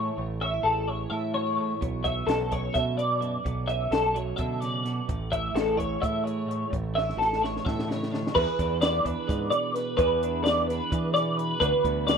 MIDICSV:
0, 0, Header, 1, 5, 480
1, 0, Start_track
1, 0, Key_signature, 3, "major"
1, 0, Tempo, 466200
1, 180, Time_signature, 7, 3, 24, 8
1, 12537, End_track
2, 0, Start_track
2, 0, Title_t, "Clean electric guitar"
2, 0, Program_c, 0, 27
2, 0, Note_on_c, 0, 73, 68
2, 179, Note_off_c, 0, 73, 0
2, 427, Note_on_c, 0, 76, 68
2, 652, Note_on_c, 0, 69, 71
2, 664, Note_off_c, 0, 76, 0
2, 897, Note_off_c, 0, 69, 0
2, 900, Note_on_c, 0, 73, 63
2, 1132, Note_off_c, 0, 73, 0
2, 1132, Note_on_c, 0, 76, 71
2, 1377, Note_off_c, 0, 76, 0
2, 1382, Note_on_c, 0, 73, 65
2, 1863, Note_off_c, 0, 73, 0
2, 2103, Note_on_c, 0, 76, 67
2, 2334, Note_on_c, 0, 69, 74
2, 2344, Note_off_c, 0, 76, 0
2, 2599, Note_off_c, 0, 69, 0
2, 2599, Note_on_c, 0, 73, 67
2, 2822, Note_on_c, 0, 76, 76
2, 2832, Note_off_c, 0, 73, 0
2, 3059, Note_off_c, 0, 76, 0
2, 3063, Note_on_c, 0, 74, 70
2, 3545, Note_off_c, 0, 74, 0
2, 3785, Note_on_c, 0, 76, 72
2, 4026, Note_off_c, 0, 76, 0
2, 4037, Note_on_c, 0, 69, 81
2, 4272, Note_off_c, 0, 69, 0
2, 4272, Note_on_c, 0, 73, 72
2, 4493, Note_off_c, 0, 73, 0
2, 4493, Note_on_c, 0, 76, 72
2, 4740, Note_off_c, 0, 76, 0
2, 4740, Note_on_c, 0, 74, 56
2, 5225, Note_off_c, 0, 74, 0
2, 5475, Note_on_c, 0, 76, 75
2, 5712, Note_off_c, 0, 76, 0
2, 5720, Note_on_c, 0, 69, 81
2, 5944, Note_off_c, 0, 69, 0
2, 5944, Note_on_c, 0, 73, 67
2, 6187, Note_off_c, 0, 73, 0
2, 6195, Note_on_c, 0, 76, 86
2, 6423, Note_off_c, 0, 76, 0
2, 6423, Note_on_c, 0, 73, 64
2, 6906, Note_off_c, 0, 73, 0
2, 7159, Note_on_c, 0, 76, 70
2, 7394, Note_off_c, 0, 76, 0
2, 7397, Note_on_c, 0, 69, 73
2, 7634, Note_off_c, 0, 69, 0
2, 7651, Note_on_c, 0, 73, 71
2, 7875, Note_off_c, 0, 73, 0
2, 7875, Note_on_c, 0, 76, 74
2, 8118, Note_off_c, 0, 76, 0
2, 8118, Note_on_c, 0, 73, 67
2, 8592, Note_off_c, 0, 73, 0
2, 8596, Note_on_c, 0, 71, 95
2, 9070, Note_off_c, 0, 71, 0
2, 9074, Note_on_c, 0, 74, 83
2, 9318, Note_off_c, 0, 74, 0
2, 9318, Note_on_c, 0, 71, 76
2, 9782, Note_off_c, 0, 71, 0
2, 9787, Note_on_c, 0, 74, 64
2, 10031, Note_off_c, 0, 74, 0
2, 10031, Note_on_c, 0, 71, 68
2, 10254, Note_off_c, 0, 71, 0
2, 10266, Note_on_c, 0, 71, 101
2, 10743, Note_off_c, 0, 71, 0
2, 10747, Note_on_c, 0, 74, 81
2, 10991, Note_off_c, 0, 74, 0
2, 10991, Note_on_c, 0, 71, 78
2, 11464, Note_off_c, 0, 71, 0
2, 11468, Note_on_c, 0, 74, 68
2, 11704, Note_off_c, 0, 74, 0
2, 11704, Note_on_c, 0, 71, 79
2, 11932, Note_off_c, 0, 71, 0
2, 11945, Note_on_c, 0, 71, 98
2, 12422, Note_off_c, 0, 71, 0
2, 12426, Note_on_c, 0, 74, 89
2, 12537, Note_off_c, 0, 74, 0
2, 12537, End_track
3, 0, Start_track
3, 0, Title_t, "Clean electric guitar"
3, 0, Program_c, 1, 27
3, 0, Note_on_c, 1, 45, 50
3, 0, Note_on_c, 1, 52, 59
3, 0, Note_on_c, 1, 64, 57
3, 0, Note_on_c, 1, 68, 47
3, 164, Note_off_c, 1, 45, 0
3, 171, Note_off_c, 1, 68, 0
3, 191, Note_on_c, 1, 45, 71
3, 419, Note_off_c, 1, 64, 0
3, 423, Note_on_c, 1, 61, 55
3, 554, Note_off_c, 1, 61, 0
3, 554, Note_on_c, 1, 64, 39
3, 668, Note_on_c, 1, 68, 56
3, 923, Note_off_c, 1, 52, 0
3, 928, Note_on_c, 1, 52, 57
3, 1148, Note_off_c, 1, 64, 0
3, 1163, Note_on_c, 1, 64, 56
3, 1380, Note_off_c, 1, 68, 0
3, 1384, Note_on_c, 1, 66, 50
3, 1513, Note_off_c, 1, 66, 0
3, 1513, Note_on_c, 1, 68, 44
3, 1626, Note_off_c, 1, 45, 0
3, 1638, Note_on_c, 1, 45, 56
3, 1842, Note_off_c, 1, 45, 0
3, 1863, Note_on_c, 1, 47, 72
3, 1869, Note_off_c, 1, 68, 0
3, 2090, Note_off_c, 1, 64, 0
3, 2095, Note_on_c, 1, 61, 50
3, 2353, Note_on_c, 1, 69, 53
3, 2585, Note_off_c, 1, 52, 0
3, 2590, Note_on_c, 1, 54, 50
3, 3077, Note_off_c, 1, 69, 0
3, 3081, Note_on_c, 1, 71, 51
3, 3112, Note_off_c, 1, 61, 0
3, 3303, Note_on_c, 1, 42, 56
3, 3306, Note_off_c, 1, 47, 0
3, 3520, Note_off_c, 1, 54, 0
3, 3525, Note_off_c, 1, 71, 0
3, 3545, Note_off_c, 1, 42, 0
3, 3546, Note_on_c, 1, 47, 76
3, 3814, Note_on_c, 1, 61, 57
3, 4040, Note_on_c, 1, 69, 55
3, 4279, Note_on_c, 1, 54, 54
3, 4508, Note_off_c, 1, 47, 0
3, 4527, Note_on_c, 1, 50, 58
3, 4758, Note_off_c, 1, 50, 0
3, 4762, Note_on_c, 1, 49, 53
3, 4993, Note_off_c, 1, 49, 0
3, 4997, Note_on_c, 1, 47, 57
3, 5205, Note_off_c, 1, 54, 0
3, 5233, Note_off_c, 1, 47, 0
3, 5233, Note_on_c, 1, 45, 71
3, 5474, Note_off_c, 1, 61, 0
3, 5479, Note_on_c, 1, 64, 52
3, 5707, Note_off_c, 1, 69, 0
3, 5712, Note_on_c, 1, 68, 51
3, 5939, Note_on_c, 1, 52, 59
3, 6178, Note_off_c, 1, 64, 0
3, 6182, Note_on_c, 1, 64, 53
3, 6433, Note_off_c, 1, 68, 0
3, 6437, Note_on_c, 1, 68, 47
3, 6643, Note_off_c, 1, 45, 0
3, 6655, Note_on_c, 1, 45, 56
3, 6874, Note_off_c, 1, 45, 0
3, 6901, Note_on_c, 1, 45, 70
3, 6932, Note_off_c, 1, 68, 0
3, 7152, Note_off_c, 1, 64, 0
3, 7156, Note_on_c, 1, 61, 53
3, 7258, Note_off_c, 1, 61, 0
3, 7258, Note_on_c, 1, 64, 43
3, 7386, Note_on_c, 1, 66, 50
3, 7508, Note_off_c, 1, 66, 0
3, 7508, Note_on_c, 1, 68, 46
3, 7618, Note_off_c, 1, 52, 0
3, 7630, Note_on_c, 1, 52, 50
3, 7881, Note_on_c, 1, 47, 57
3, 8114, Note_off_c, 1, 47, 0
3, 8118, Note_on_c, 1, 49, 58
3, 8354, Note_off_c, 1, 49, 0
3, 8364, Note_on_c, 1, 50, 56
3, 8556, Note_off_c, 1, 45, 0
3, 8574, Note_off_c, 1, 52, 0
3, 8583, Note_off_c, 1, 64, 0
3, 8586, Note_off_c, 1, 68, 0
3, 8586, Note_on_c, 1, 52, 72
3, 8597, Note_off_c, 1, 50, 0
3, 8598, Note_on_c, 1, 68, 65
3, 8858, Note_on_c, 1, 62, 61
3, 9071, Note_off_c, 1, 68, 0
3, 9071, Note_on_c, 1, 59, 59
3, 9075, Note_on_c, 1, 66, 49
3, 9188, Note_off_c, 1, 66, 0
3, 9188, Note_on_c, 1, 68, 53
3, 9310, Note_off_c, 1, 62, 0
3, 9314, Note_on_c, 1, 62, 52
3, 9535, Note_off_c, 1, 68, 0
3, 9547, Note_on_c, 1, 68, 67
3, 9786, Note_on_c, 1, 47, 57
3, 10237, Note_off_c, 1, 68, 0
3, 10266, Note_off_c, 1, 47, 0
3, 10268, Note_off_c, 1, 52, 0
3, 10272, Note_on_c, 1, 52, 78
3, 10276, Note_on_c, 1, 68, 72
3, 10303, Note_off_c, 1, 62, 0
3, 10542, Note_on_c, 1, 62, 61
3, 10750, Note_off_c, 1, 68, 0
3, 10753, Note_off_c, 1, 59, 0
3, 10757, Note_on_c, 1, 59, 60
3, 10768, Note_on_c, 1, 68, 48
3, 11016, Note_off_c, 1, 62, 0
3, 11020, Note_on_c, 1, 62, 54
3, 11233, Note_off_c, 1, 68, 0
3, 11265, Note_on_c, 1, 68, 68
3, 11495, Note_on_c, 1, 47, 58
3, 11935, Note_off_c, 1, 68, 0
3, 11958, Note_off_c, 1, 47, 0
3, 11962, Note_on_c, 1, 50, 78
3, 11973, Note_on_c, 1, 66, 68
3, 12205, Note_off_c, 1, 59, 0
3, 12209, Note_on_c, 1, 59, 64
3, 12442, Note_off_c, 1, 52, 0
3, 12446, Note_on_c, 1, 54, 64
3, 12447, Note_off_c, 1, 66, 0
3, 12451, Note_on_c, 1, 66, 49
3, 12537, Note_off_c, 1, 50, 0
3, 12537, Note_off_c, 1, 54, 0
3, 12537, Note_off_c, 1, 59, 0
3, 12537, Note_off_c, 1, 62, 0
3, 12537, Note_off_c, 1, 66, 0
3, 12537, End_track
4, 0, Start_track
4, 0, Title_t, "Fingered electric bass"
4, 0, Program_c, 2, 33
4, 183, Note_on_c, 2, 33, 88
4, 606, Note_off_c, 2, 33, 0
4, 661, Note_on_c, 2, 33, 88
4, 1085, Note_off_c, 2, 33, 0
4, 1144, Note_on_c, 2, 45, 78
4, 1778, Note_off_c, 2, 45, 0
4, 1874, Note_on_c, 2, 35, 88
4, 2293, Note_off_c, 2, 35, 0
4, 2340, Note_on_c, 2, 35, 92
4, 2765, Note_off_c, 2, 35, 0
4, 2834, Note_on_c, 2, 47, 85
4, 3465, Note_off_c, 2, 47, 0
4, 3556, Note_on_c, 2, 35, 91
4, 3975, Note_off_c, 2, 35, 0
4, 4026, Note_on_c, 2, 35, 88
4, 4449, Note_off_c, 2, 35, 0
4, 4512, Note_on_c, 2, 47, 74
4, 5145, Note_off_c, 2, 47, 0
4, 5241, Note_on_c, 2, 33, 82
4, 5658, Note_off_c, 2, 33, 0
4, 5707, Note_on_c, 2, 33, 94
4, 6131, Note_off_c, 2, 33, 0
4, 6206, Note_on_c, 2, 45, 78
4, 6833, Note_off_c, 2, 45, 0
4, 6929, Note_on_c, 2, 33, 102
4, 7343, Note_off_c, 2, 33, 0
4, 7384, Note_on_c, 2, 33, 97
4, 7809, Note_off_c, 2, 33, 0
4, 7889, Note_on_c, 2, 45, 80
4, 8514, Note_off_c, 2, 45, 0
4, 8605, Note_on_c, 2, 40, 107
4, 8704, Note_off_c, 2, 40, 0
4, 8844, Note_on_c, 2, 40, 92
4, 9260, Note_off_c, 2, 40, 0
4, 9317, Note_on_c, 2, 40, 88
4, 9419, Note_off_c, 2, 40, 0
4, 9566, Note_on_c, 2, 44, 79
4, 9769, Note_off_c, 2, 44, 0
4, 10281, Note_on_c, 2, 40, 101
4, 11118, Note_off_c, 2, 40, 0
4, 11244, Note_on_c, 2, 52, 83
4, 11869, Note_off_c, 2, 52, 0
4, 11962, Note_on_c, 2, 38, 99
4, 12060, Note_off_c, 2, 38, 0
4, 12200, Note_on_c, 2, 38, 102
4, 12537, Note_off_c, 2, 38, 0
4, 12537, End_track
5, 0, Start_track
5, 0, Title_t, "Drums"
5, 1875, Note_on_c, 9, 42, 75
5, 1879, Note_on_c, 9, 36, 98
5, 1978, Note_off_c, 9, 42, 0
5, 1981, Note_off_c, 9, 36, 0
5, 2108, Note_on_c, 9, 42, 51
5, 2116, Note_on_c, 9, 36, 69
5, 2211, Note_off_c, 9, 42, 0
5, 2219, Note_off_c, 9, 36, 0
5, 2353, Note_on_c, 9, 42, 77
5, 2363, Note_on_c, 9, 38, 99
5, 2456, Note_off_c, 9, 42, 0
5, 2466, Note_off_c, 9, 38, 0
5, 2590, Note_on_c, 9, 42, 57
5, 2597, Note_on_c, 9, 36, 70
5, 2693, Note_off_c, 9, 42, 0
5, 2700, Note_off_c, 9, 36, 0
5, 2829, Note_on_c, 9, 42, 77
5, 2837, Note_on_c, 9, 36, 97
5, 2840, Note_on_c, 9, 38, 27
5, 2932, Note_off_c, 9, 42, 0
5, 2940, Note_off_c, 9, 36, 0
5, 2943, Note_off_c, 9, 38, 0
5, 3076, Note_on_c, 9, 42, 58
5, 3178, Note_off_c, 9, 42, 0
5, 3317, Note_on_c, 9, 42, 49
5, 3420, Note_off_c, 9, 42, 0
5, 3561, Note_on_c, 9, 36, 89
5, 3565, Note_on_c, 9, 42, 75
5, 3664, Note_off_c, 9, 36, 0
5, 3668, Note_off_c, 9, 42, 0
5, 3800, Note_on_c, 9, 42, 53
5, 3903, Note_off_c, 9, 42, 0
5, 4037, Note_on_c, 9, 42, 82
5, 4048, Note_on_c, 9, 38, 107
5, 4140, Note_off_c, 9, 42, 0
5, 4151, Note_off_c, 9, 38, 0
5, 4283, Note_on_c, 9, 42, 54
5, 4386, Note_off_c, 9, 42, 0
5, 4509, Note_on_c, 9, 42, 72
5, 4520, Note_on_c, 9, 36, 88
5, 4612, Note_off_c, 9, 42, 0
5, 4623, Note_off_c, 9, 36, 0
5, 4754, Note_on_c, 9, 42, 57
5, 4765, Note_on_c, 9, 38, 34
5, 4857, Note_off_c, 9, 42, 0
5, 4868, Note_off_c, 9, 38, 0
5, 5000, Note_on_c, 9, 42, 58
5, 5010, Note_on_c, 9, 38, 34
5, 5103, Note_off_c, 9, 42, 0
5, 5113, Note_off_c, 9, 38, 0
5, 5239, Note_on_c, 9, 42, 78
5, 5242, Note_on_c, 9, 36, 95
5, 5342, Note_off_c, 9, 42, 0
5, 5345, Note_off_c, 9, 36, 0
5, 5486, Note_on_c, 9, 36, 64
5, 5487, Note_on_c, 9, 42, 64
5, 5589, Note_off_c, 9, 36, 0
5, 5590, Note_off_c, 9, 42, 0
5, 5726, Note_on_c, 9, 42, 74
5, 5736, Note_on_c, 9, 38, 103
5, 5829, Note_off_c, 9, 42, 0
5, 5839, Note_off_c, 9, 38, 0
5, 5969, Note_on_c, 9, 36, 64
5, 5971, Note_on_c, 9, 42, 62
5, 6072, Note_off_c, 9, 36, 0
5, 6074, Note_off_c, 9, 42, 0
5, 6209, Note_on_c, 9, 36, 100
5, 6216, Note_on_c, 9, 42, 75
5, 6312, Note_off_c, 9, 36, 0
5, 6319, Note_off_c, 9, 42, 0
5, 6457, Note_on_c, 9, 42, 59
5, 6560, Note_off_c, 9, 42, 0
5, 6701, Note_on_c, 9, 42, 58
5, 6804, Note_off_c, 9, 42, 0
5, 6929, Note_on_c, 9, 36, 99
5, 6936, Note_on_c, 9, 42, 64
5, 7032, Note_off_c, 9, 36, 0
5, 7039, Note_off_c, 9, 42, 0
5, 7186, Note_on_c, 9, 38, 49
5, 7289, Note_off_c, 9, 38, 0
5, 7305, Note_on_c, 9, 38, 47
5, 7408, Note_off_c, 9, 38, 0
5, 7428, Note_on_c, 9, 38, 55
5, 7531, Note_off_c, 9, 38, 0
5, 7546, Note_on_c, 9, 38, 53
5, 7649, Note_off_c, 9, 38, 0
5, 7664, Note_on_c, 9, 38, 64
5, 7767, Note_off_c, 9, 38, 0
5, 7789, Note_on_c, 9, 38, 52
5, 7891, Note_on_c, 9, 36, 100
5, 7892, Note_off_c, 9, 38, 0
5, 7902, Note_on_c, 9, 38, 66
5, 7994, Note_off_c, 9, 36, 0
5, 8005, Note_off_c, 9, 38, 0
5, 8023, Note_on_c, 9, 38, 69
5, 8126, Note_off_c, 9, 38, 0
5, 8143, Note_on_c, 9, 38, 84
5, 8246, Note_off_c, 9, 38, 0
5, 8267, Note_on_c, 9, 38, 63
5, 8370, Note_off_c, 9, 38, 0
5, 8381, Note_on_c, 9, 38, 87
5, 8484, Note_off_c, 9, 38, 0
5, 8514, Note_on_c, 9, 38, 77
5, 8609, Note_on_c, 9, 36, 101
5, 8617, Note_off_c, 9, 38, 0
5, 8618, Note_on_c, 9, 49, 110
5, 8712, Note_off_c, 9, 36, 0
5, 8721, Note_off_c, 9, 49, 0
5, 8847, Note_on_c, 9, 36, 72
5, 8847, Note_on_c, 9, 42, 69
5, 8858, Note_on_c, 9, 38, 33
5, 8950, Note_off_c, 9, 36, 0
5, 8950, Note_off_c, 9, 42, 0
5, 8961, Note_off_c, 9, 38, 0
5, 9080, Note_on_c, 9, 42, 103
5, 9090, Note_on_c, 9, 38, 111
5, 9183, Note_off_c, 9, 42, 0
5, 9193, Note_off_c, 9, 38, 0
5, 9324, Note_on_c, 9, 36, 68
5, 9327, Note_on_c, 9, 42, 78
5, 9427, Note_off_c, 9, 36, 0
5, 9430, Note_off_c, 9, 42, 0
5, 9567, Note_on_c, 9, 36, 111
5, 9577, Note_on_c, 9, 42, 86
5, 9670, Note_off_c, 9, 36, 0
5, 9680, Note_off_c, 9, 42, 0
5, 9802, Note_on_c, 9, 42, 64
5, 9905, Note_off_c, 9, 42, 0
5, 10046, Note_on_c, 9, 42, 68
5, 10056, Note_on_c, 9, 38, 35
5, 10148, Note_off_c, 9, 42, 0
5, 10159, Note_off_c, 9, 38, 0
5, 10279, Note_on_c, 9, 42, 83
5, 10284, Note_on_c, 9, 36, 110
5, 10381, Note_off_c, 9, 42, 0
5, 10387, Note_off_c, 9, 36, 0
5, 10530, Note_on_c, 9, 42, 65
5, 10633, Note_off_c, 9, 42, 0
5, 10767, Note_on_c, 9, 42, 93
5, 10777, Note_on_c, 9, 38, 123
5, 10870, Note_off_c, 9, 42, 0
5, 10880, Note_off_c, 9, 38, 0
5, 11019, Note_on_c, 9, 42, 69
5, 11029, Note_on_c, 9, 38, 37
5, 11122, Note_off_c, 9, 42, 0
5, 11132, Note_off_c, 9, 38, 0
5, 11244, Note_on_c, 9, 36, 106
5, 11248, Note_on_c, 9, 42, 98
5, 11347, Note_off_c, 9, 36, 0
5, 11351, Note_off_c, 9, 42, 0
5, 11493, Note_on_c, 9, 42, 74
5, 11503, Note_on_c, 9, 38, 39
5, 11595, Note_off_c, 9, 42, 0
5, 11606, Note_off_c, 9, 38, 0
5, 11728, Note_on_c, 9, 42, 66
5, 11831, Note_off_c, 9, 42, 0
5, 11959, Note_on_c, 9, 36, 102
5, 11963, Note_on_c, 9, 42, 92
5, 12062, Note_off_c, 9, 36, 0
5, 12066, Note_off_c, 9, 42, 0
5, 12197, Note_on_c, 9, 36, 83
5, 12201, Note_on_c, 9, 42, 69
5, 12300, Note_off_c, 9, 36, 0
5, 12304, Note_off_c, 9, 42, 0
5, 12440, Note_on_c, 9, 42, 108
5, 12450, Note_on_c, 9, 38, 112
5, 12537, Note_off_c, 9, 38, 0
5, 12537, Note_off_c, 9, 42, 0
5, 12537, End_track
0, 0, End_of_file